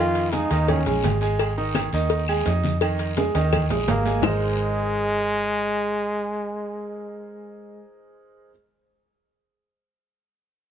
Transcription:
Already playing: fingered electric bass F2, grand piano D#3 D#4 D#5, trombone F4
0.15 cowbell, high conga, low agogo
0.32 grand piano G#3 G#4 G#5, trombone D#4, cowbell, high conga, low timbale, short guiro
0.50 fingered electric bass D#2, grand piano D#3 D#4 D#5, cowbell, low agogo, short guiro
0.68 trombone C#4, cowbell, high conga, low conga, low agogo, long guiro
0.86 fingered electric bass A#1, grand piano G#3 G#4 G#5, cowbell, high conga, low conga
1.04 fingered electric bass G#1, cowbell, high conga, low timbale, low agogo, short guiro
1.21 grand piano G#3 G#4 G#5, low agogo, short guiro
1.39 cowbell, high conga, low agogo, long guiro, claves
1.57 grand piano D#3 D#4 D#5, high conga
1.75 cowbell, high conga, low timbale, low agogo, short guiro, claves
1.93 fingered electric bass D#2, grand piano D#3 D#4 D#5, high conga, low agogo, short guiro
2.10 cowbell, long guiro
2.28 grand piano G#3 G#4 G#5, high conga, low agogo, claves
2.46 fingered electric bass F2, grand piano D#4 D#5 D#6, cowbell, low timbale, low agogo, short guiro
2.64 high conga, short guiro
2.81 grand piano D#3 D#4 D#5, cowbell, high conga, low agogo, long guiro, claves
2.99 cowbell, high conga, low agogo
3.17 grand piano G#3 G#4 G#5, cowbell, high conga, high timbale, short guiro
3.34 fingered electric bass D#2, grand piano D#3 D#4 D#5, cowbell, high timbale, low agogo, short guiro
3.53 cowbell, high conga, low conga, low agogo, long guiro, claves
3.70 fingered electric bass A#1, grand piano G#3 G#4 G#5, cowbell, high conga, low conga, low timbale
3.88 fingered electric bass G#1, trombone A#3, cowbell, high conga, low timbale, low agogo, short guiro
4.05 grand piano G#3 G#4 G#5, low timbale, low agogo, short guiro
4.22 fingered electric bass G#1, grand piano G#3 D#4 G#4 A#4 C5 D#5, trombone G#3, low bongo, low conga, low timbale, long guiro, claves

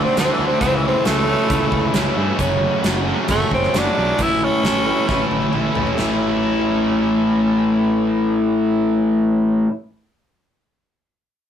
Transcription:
Already playing: distorted electric guitar D3 A3 D4 F#4
0.04 tenor saxophone C4
0.16 fingered electric bass D2, distorted electric guitar D3 A3 D4 F#4, tenor saxophone C4, snare, closed hi-hat
0.33 tenor saxophone E3
0.39 fingered electric bass D2, distorted electric guitar D3 A3 D4 F#4
0.46 tenor saxophone C4
0.60 fingered electric bass C#2, distorted electric guitar C#3 E3 A3 C#4 E4, tenor saxophone C4, kick, closed hi-hat
0.76 tenor saxophone E3
0.88 tenor saxophone C4
1.05 fingered electric bass C#2, distorted electric guitar C#3 E3 A3 C#4 E4, tenor saxophone A3, snare, closed hi-hat
1.27 distorted electric guitar C#3 E3 A3 C#4 E4
1.49 fingered electric bass C#2, distorted electric guitar C#3 E3 A3 C#4 E4, kick, closed hi-hat
1.72 fingered electric bass C#2, kick
1.93 fingered electric bass C#2, distorted electric guitar C#3 E3 A3 C#4 E4, snare, closed hi-hat
2.16 fingered electric bass G2, distorted electric guitar C#3 E3 A3 C#4 E4
2.38 fingered electric bass F#1, distorted electric guitar F#2 C#3 F#3 A3 C#4 F#4, kick, closed hi-hat
2.83 fingered electric bass F#1, distorted electric guitar F#2 C#3 F#3 A3 C#4 F#4, snare, closed hi-hat
3.05 distorted electric guitar F#2 C#3 F#3 A3 C#4 F#4
3.28 fingered electric bass F#1, distorted electric guitar F#2 C#3 F#3 A3 C#4 F#4, tenor saxophone A3, kick, closed hi-hat
3.51 fingered electric bass F#1, tenor saxophone C4, kick
3.63 snare
3.73 fingered electric bass F#1, distorted electric guitar F#2 C#3 F#3 A3 C#4 F#4, snare, closed hi-hat
3.78 tenor saxophone D4
3.96 fingered electric bass B1, distorted electric guitar F#2 C#3 F#3 A3 C#4 F#4
4.17 fingered electric bass A1, distorted electric guitar A2 E3 A3 C#4 E4, kick, closed hi-hat
4.22 tenor saxophone E4
4.44 tenor saxophone C#4
4.62 fingered electric bass A1, distorted electric guitar A2 E3 A3 C#4 E4, snare, closed hi-hat
4.86 distorted electric guitar A2 E3 A3 C#4 E4
5.07 fingered electric bass A1, distorted electric guitar A2 E3 A3 C#4 E4, kick, snare
5.31 fingered electric bass A1, high tom
5.42 high tom
5.52 fingered electric bass A1, distorted electric guitar A2 E3 A3 C#4 E4, mid tom
5.75 fingered electric bass A1, distorted electric guitar A2 E3 A3 C#4 E4, floor tom
5.87 floor tom
5.96 fingered electric bass A1, distorted electric guitar A2 E3 A3 C#4 E4, snare, splash

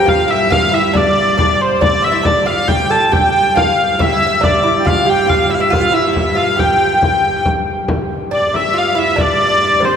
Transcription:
Already playing: viola da gamba G2, recorder G5
0.06 lute F4, hurdy-gurdy F5, recorder F5, frame drum
0.28 lute E4, recorder E5, hurdy-gurdy E5
0.50 lute F4, hurdy-gurdy F5, recorder F5, frame drum
0.72 lute E4, recorder E5, hurdy-gurdy E5
0.93 lute D4, recorder D5, hurdy-gurdy D5, frame drum
1.17 frame drum
1.37 lute D4, recorder D5, hurdy-gurdy D5, frame drum
1.61 recorder C5, hurdy-gurdy C5
1.81 lute D4, hurdy-gurdy D5, recorder D5, frame drum
2.02 lute E4, hurdy-gurdy E5, recorder E5, frame drum
2.08 lute E4
2.23 lute D4, hurdy-gurdy D5, recorder D5, frame drum
2.46 lute F4, hurdy-gurdy F5, recorder F5, frame drum
2.68 viola da gamba G2, lute G4, hurdy-gurdy G5, recorder G5, frame drum
2.90 lute A4, hurdy-gurdy A5
3.12 lute G4, recorder G5, hurdy-gurdy G5, frame drum
3.55 lute F4, recorder F5, hurdy-gurdy F5, frame drum
3.79 frame drum
3.99 lute E4, recorder E5, hurdy-gurdy E5, frame drum
4.06 recorder F5
4.12 lute E4, recorder E5
4.27 lute E4
4.41 lute D4, recorder D5, hurdy-gurdy D5, frame drum
4.63 lute E4
4.79 recorder G5
4.85 lute F4, hurdy-gurdy F5, recorder F5, frame drum
5.06 lute G4, hurdy-gurdy G5, frame drum
5.27 lute F4, hurdy-gurdy F5, recorder F5, frame drum
5.50 lute E4, hurdy-gurdy E5
5.54 hurdy-gurdy F5
5.60 lute E4, hurdy-gurdy E5
5.70 lute F4, hurdy-gurdy F5, recorder F5, frame drum
5.76 lute F4
5.81 lute F4
5.92 lute E4, hurdy-gurdy E5, recorder E5
6.13 lute E4, hurdy-gurdy E5, recorder E5, frame drum
6.35 lute F4, hurdy-gurdy F5, recorder F5, frame drum
6.57 lute G4, hurdy-gurdy G5, recorder G5, frame drum
7.02 frame drum
7.45 frame drum
7.88 viola da gamba G2, frame drum
8.31 lute D4, recorder D5, hurdy-gurdy D5
8.53 recorder E5, hurdy-gurdy E5, frame drum
8.74 lute F4, recorder F5
8.78 hurdy-gurdy F5
8.95 lute E4, recorder E5, hurdy-gurdy E5, frame drum
9.16 lute D4, recorder D5, frame drum
9.20 hurdy-gurdy D5
9.60 recorder D5
9.80 lute C4, recorder C5, frame drum
9.85 hurdy-gurdy C5

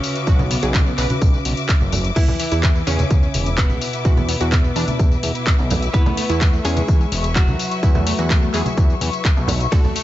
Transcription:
Already playing: clean electric guitar C#3 C#4, synth pluck F#4, string section F#4 B4 E5 D6
0.04 open hi-hat, tambourine
0.16 closed hi-hat, tambourine
0.27 analog synth bass B1, synth pluck F#4, kick, closed hi-hat, tambourine
0.39 synth pluck B3, tambourine, high conga, low conga
0.51 synth pluck B3, open hi-hat, tambourine
0.63 analog synth bass B1, synth pluck G#4, closed hi-hat, tambourine
0.74 synth pluck B3, kick, clap, closed hi-hat, tambourine, high conga
0.86 synth pluck B3, tambourine
0.98 analog synth bass B1, synth pluck B4, clap, open hi-hat, tambourine
1.10 closed hi-hat, tambourine, high conga
1.22 analog synth bass B1, kick, closed hi-hat, tambourine
1.34 tambourine
1.45 analog synth bass B1, open hi-hat, tambourine, high conga
1.57 closed hi-hat, tambourine
1.69 kick, clap, closed hi-hat, tambourine
1.80 analog synth bass F#1, tambourine, high conga
1.92 open hi-hat, tambourine, low conga
2.04 closed hi-hat, tambourine
2.16 analog synth bass E2, clean electric guitar E3 E4, synth pluck E4, string section E4 B4 E5, kick, closed hi-hat, tambourine, crash
2.28 synth pluck E3, tambourine, high conga, low conga
2.40 synth pluck E3, open hi-hat, tambourine
2.52 analog synth bass E2, synth pluck E4, closed hi-hat, tambourine
2.63 synth pluck E3, kick, clap, closed hi-hat, tambourine, high conga
2.75 synth pluck E3, tambourine
2.87 analog synth bass E2, clean electric guitar C#3 C#4, synth pluck C#4, open hi-hat, tambourine
2.99 closed hi-hat, tambourine, high conga
3.11 analog synth bass E2, kick, closed hi-hat, tambourine
3.23 tambourine
3.34 analog synth bass E1, open hi-hat, tambourine, high conga
3.46 closed hi-hat, tambourine
3.58 clean electric guitar B2 B3, kick, clap, closed hi-hat, tambourine
3.69 analog synth bass D2, tambourine, high conga
3.81 open hi-hat, tambourine
3.93 closed hi-hat, tambourine
4.05 analog synth bass E2, synth pluck F#4, kick, closed hi-hat, tambourine
4.17 synth pluck B3, tambourine, high conga, low conga
4.29 synth pluck B3, open hi-hat, tambourine
4.41 analog synth bass E2, synth pluck F#4, closed hi-hat, tambourine
4.52 synth pluck B3, kick, clap, closed hi-hat, tambourine, high conga
4.64 synth pluck B3, tambourine
4.76 analog synth bass E2, synth pluck D4, open hi-hat, tambourine
4.88 closed hi-hat, tambourine, high conga
4.99 analog synth bass E2, kick, closed hi-hat, tambourine
5.12 tambourine
5.23 analog synth bass E2, open hi-hat, tambourine, high conga
5.35 closed hi-hat, tambourine
5.47 kick, clap, closed hi-hat, tambourine
5.59 analog synth bass B1, tambourine, high conga
5.70 open hi-hat, tambourine, low conga
5.82 closed hi-hat, tambourine
5.94 analog synth bass E2, clean electric guitar B3 B4, synth pluck E4, string section C#6, kick, closed hi-hat, tambourine
6.06 synth pluck A3, tambourine, high conga, low conga
6.17 synth pluck A3, open hi-hat, tambourine
6.29 analog synth bass E2, synth pluck E4, closed hi-hat, tambourine
6.41 synth pluck A3, kick, clap, closed hi-hat, tambourine, high conga
6.53 synth pluck A3, tambourine
6.65 analog synth bass E2, clean electric guitar G#3 G#4, synth pluck C#4, open hi-hat, tambourine
6.77 closed hi-hat, tambourine, high conga
6.88 analog synth bass E2, kick, closed hi-hat, tambourine
7.00 tambourine
7.12 analog synth bass E1, open hi-hat, tambourine, high conga
7.24 closed hi-hat, tambourine
7.35 clean electric guitar F#3 F#4, kick, clap, closed hi-hat, tambourine
7.48 analog synth bass E2, tambourine, high conga
7.59 open hi-hat, tambourine
7.71 closed hi-hat, tambourine
7.83 analog synth bass E2, synth pluck E4, kick, closed hi-hat, tambourine
7.95 synth pluck A3, tambourine, high conga, low conga
8.07 synth pluck A3, open hi-hat, tambourine
8.19 analog synth bass E2, synth pluck F#4, closed hi-hat, tambourine
8.30 synth pluck A3, kick, clap, closed hi-hat, tambourine, high conga
8.42 synth pluck A3, tambourine
8.54 analog synth bass E2, synth pluck G#4, clap, open hi-hat, tambourine
8.66 closed hi-hat, tambourine, high conga
8.77 analog synth bass E2, kick, closed hi-hat, tambourine
8.90 tambourine
9.00 analog synth bass E2, open hi-hat, tambourine, high conga
9.13 closed hi-hat, tambourine
9.25 kick, clap, closed hi-hat, tambourine
9.37 analog synth bass B1, tambourine, high conga
9.48 open hi-hat, tambourine, low conga
9.61 closed hi-hat, tambourine
9.72 analog synth bass D2, clean electric guitar A3 A4, synth pluck F#4, string section F#4 D5, kick, closed hi-hat, ride, tambourine
9.83 synth pluck A3, tambourine, high conga, low conga
9.96 synth pluck A3, open hi-hat, tambourine

